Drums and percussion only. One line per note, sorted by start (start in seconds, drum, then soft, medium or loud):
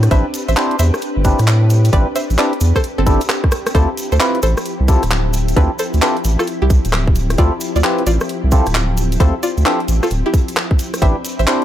0.03 cross-stick medium
0.03 closed hi-hat medium
0.03 cabasa medium
0.11 kick loud
0.11 closed hi-hat medium
0.11 cabasa soft
0.34 closed hi-hat loud
0.34 cabasa medium
0.48 closed hi-hat soft
0.48 cabasa medium
0.56 clap loud
0.56 closed hi-hat medium
0.56 cabasa soft
0.71 closed hi-hat soft
0.79 closed hi-hat loud
0.79 cabasa loud
0.94 cross-stick medium
0.94 cabasa soft
1.02 closed hi-hat medium
1.02 cabasa soft
1.25 kick loud
1.25 closed hi-hat loud
1.25 cabasa medium
1.39 cross-stick soft
1.39 closed hi-hat medium
1.39 cabasa medium
1.48 clap loud
1.48 closed hi-hat medium
1.48 cabasa soft
1.70 closed hi-hat loud
1.70 cabasa medium
1.85 closed hi-hat medium
1.85 cabasa medium
1.93 kick loud
1.93 closed hi-hat medium
1.93 cabasa soft
2.16 closed hi-hat loud
2.16 cabasa medium
2.30 closed hi-hat soft
2.30 cabasa soft
2.38 clap loud
2.38 closed hi-hat medium
2.38 cabasa soft
2.53 closed hi-hat soft
2.61 closed hi-hat loud
2.61 cabasa medium
2.76 kick medium
2.76 cross-stick medium
2.76 cabasa medium
2.84 closed hi-hat medium
2.84 cabasa soft
3.06 kick loud
3.06 closed hi-hat loud
3.06 cabasa medium
3.21 closed hi-hat medium
3.21 cabasa medium
3.29 cross-stick medium
3.29 clap loud
3.29 closed hi-hat medium
3.29 cabasa soft
3.44 kick loud
3.44 cross-stick medium
3.52 cross-stick medium
3.52 closed hi-hat loud
3.52 cabasa medium
3.66 cross-stick medium
3.66 closed hi-hat medium
3.66 cabasa soft
3.75 kick loud
3.75 closed hi-hat medium
3.75 cabasa soft
3.97 closed hi-hat loud
3.97 cabasa medium
4.12 closed hi-hat soft
4.12 cabasa medium
4.20 clap loud
4.20 closed hi-hat medium
4.20 cabasa soft
4.35 closed hi-hat soft
4.43 closed hi-hat loud
4.43 cabasa medium
4.57 cross-stick medium
4.57 cabasa medium
4.65 closed hi-hat medium
4.65 cabasa soft
4.88 kick loud
4.88 closed hi-hat loud
4.88 cabasa medium
5.03 cross-stick soft
5.03 closed hi-hat medium
5.03 cabasa soft
5.11 clap loud
5.11 closed hi-hat medium
5.11 cabasa soft
5.33 closed hi-hat loud
5.33 cabasa medium
5.48 closed hi-hat medium
5.48 cabasa medium
5.56 kick loud
5.56 closed hi-hat medium
5.56 cabasa soft
5.79 closed hi-hat loud
5.79 cabasa medium
5.94 closed hi-hat soft
5.94 cabasa medium
6.02 clap loud
6.02 closed hi-hat medium
6.02 cabasa soft
6.17 closed hi-hat soft
6.24 closed hi-hat loud
6.24 cabasa loud
6.39 cross-stick medium
6.39 cabasa medium
6.47 closed hi-hat medium
6.47 cabasa soft
6.70 kick loud
6.70 closed hi-hat loud
6.70 cabasa medium
6.85 closed hi-hat medium
6.85 cabasa medium
6.93 cross-stick medium
6.93 clap loud
6.93 closed hi-hat medium
6.93 cabasa soft
7.07 kick loud
7.15 closed hi-hat loud
7.15 cabasa medium
7.30 cross-stick medium
7.30 closed hi-hat medium
7.30 cabasa medium
7.38 kick loud
7.38 closed hi-hat medium
7.38 cabasa soft
7.61 closed hi-hat loud
7.61 cabasa loud
7.76 closed hi-hat soft
7.76 cabasa medium
7.83 clap loud
7.83 closed hi-hat medium
7.83 cabasa soft
7.98 closed hi-hat soft
8.07 closed hi-hat loud
8.07 cabasa medium
8.20 cross-stick medium
8.20 cabasa medium
8.29 closed hi-hat medium
8.29 cabasa soft
8.52 kick loud
8.52 closed hi-hat loud
8.52 cabasa loud
8.66 cross-stick soft
8.66 closed hi-hat medium
8.66 cabasa medium
8.75 clap loud
8.75 closed hi-hat medium
8.75 cabasa soft
8.97 closed hi-hat loud
8.97 cabasa loud
9.12 closed hi-hat medium
9.12 cabasa medium
9.20 kick loud
9.20 closed hi-hat medium
9.20 cabasa soft
9.43 closed hi-hat loud
9.43 cabasa medium
9.58 closed hi-hat soft
9.58 cabasa medium
9.66 clap loud
9.66 closed hi-hat medium
9.66 cabasa soft
9.80 closed hi-hat soft
9.88 closed hi-hat loud
9.88 cabasa medium
10.03 cross-stick medium
10.03 cabasa soft
10.11 closed hi-hat medium
10.11 cabasa soft
10.34 kick loud
10.34 closed hi-hat medium
10.34 cabasa medium
10.48 closed hi-hat medium
10.48 cabasa medium
10.56 cross-stick medium
10.56 clap loud
10.56 closed hi-hat medium
10.56 cabasa soft
10.71 kick loud
10.79 closed hi-hat loud
10.79 cabasa medium
10.94 cross-stick medium
10.94 closed hi-hat medium
10.94 cabasa medium
11.02 kick loud
11.02 closed hi-hat medium
11.02 cabasa soft
11.25 closed hi-hat loud
11.25 cabasa medium
11.39 closed hi-hat soft
11.39 cabasa medium
11.47 clap loud
11.47 closed hi-hat medium
11.47 cabasa soft